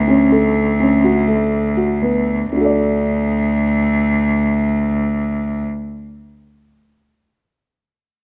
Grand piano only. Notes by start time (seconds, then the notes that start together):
0.08 C#4
0.32 A4
0.80 C#4
1.04 F#4
1.28 A3
1.77 F#4
2.02 B3
2.53 D4
2.57 F#4
2.61 A4 D5